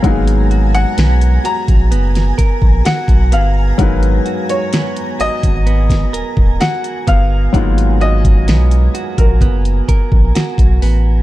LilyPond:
<<
  \new Staff \with { instrumentName = "Ambient pad" } { \time 4/4 \key aes \dorian \tempo 4 = 64 <aes'' bes''>1~ | <aes'' bes''>1~ | <aes'' bes''>1 | }
  \new Staff \with { instrumentName = "Grand piano" } { \time 4/4 \key aes \dorian f''8. ges''8. bes''4. ges''8 f''8~ | f''8. des''8. ees''4. ges''8 f''8~ | f''8 ees''4~ ees''16 bes'4.~ bes'16 r8 | }
  \new Staff \with { instrumentName = "Clean electric guitar" } { \time 4/4 \key aes \dorian <aes ces' ges' bes'>8 ges'8 ces'8 ges'8 ces'8 bes'8 ges'8 ces'8 | aes8 ges'8 ces'8 ges'8 ces'8 bes'8 ges'8 ces'8 | aes8 ges'8 ces'8 ges'8 ces'8 bes'8 ges'8 ces'8 | }
  \new Staff \with { instrumentName = "Grand piano" } { \time 4/4 \key aes \dorian <ges bes ces' ees' aes'>1 | <ges ces' ees' bes' ces''>1 | <ges bes ces' ees' f'>1 | }
  \new Staff \with { instrumentName = "Sub bass" } { \clef bass \time 4/4 \key aes \dorian aes,,4 ces,8 r16 bes,,16 ges,,8 r16 bes,,16 r16 ces,16 g,,8 | aes,,8 r4 aes,,16 aes,,8. ees,,16 ees,,16 r8 g,,8 | aes,,4 ces,8 r16 bes,,16 ges,,8 r16 bes,,16 r16 ces,16 a,,8 | }
  \new DrumStaff \with { instrumentName = "Drums" } \drummode { \time 4/4 <hh bd>16 hh16 hh16 hh16 <hh sn>16 hh16 hh16 <hh bd>16 hh16 <hh sn>16 <hh bd>16 bd16 <hh sn>16 <hh bd>16 hh8 | <hh bd>16 hh16 hh16 hh16 <hh sn>16 hh16 hh16 <hh bd>16 hh16 <hh bd sn>16 hh16 bd16 <hh sn>16 hh16 <hh bd>8 | <hh bd>16 hh16 hh16 <hh bd>16 <hh sn>16 hh16 hh16 <hh bd>16 <hh bd>16 hh16 <hh bd>16 bd16 <hh sn>16 <hh bd>16 hho8 | }
>>